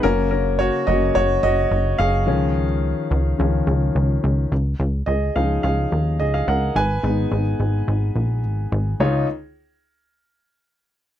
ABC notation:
X:1
M:4/4
L:1/16
Q:1/4=107
K:Dbmix
V:1 name="Grand piano"
[DB]2 [DB]2 [Gd]2 [Ge]2 [Gd]2 [Ge]4 [Af]2- | [Af]6 z8 z2 | z4 [Ae]2 [Af]2 [Af]4 [Ae] [Af] [Bg]2 | [ca]12 z4 |
[EFd]2 z12 z2 |]
V:2 name="Grand piano" clef=bass
[D,G,B,]6 [D,G,B,]2 z8 | [E,F,D]2 z6 [E,F,D]2 z6 | z6 [F,DE]6 z4 | z2 [A,CE]2 z12 |
D,,2 z12 z2 |]
V:3 name="Analog synth bass" clef=bass
G,,,4- G,,, z G,,,2 G,,,2 G,,,2 G,,,2 G,,,2 | D,,4- D,, z D,,2 D,,2 D,,2 D,,2 D,,2 | D,,2 D,,2 D,,2 D,,2 D,,2 E,,2 D,,2 D,,2 | A,,,2 A,,,2 A,,,2 A,,,2 A,,,2 B,,,2 A,,,2 A,,,2 |
D,,2 z12 z2 |]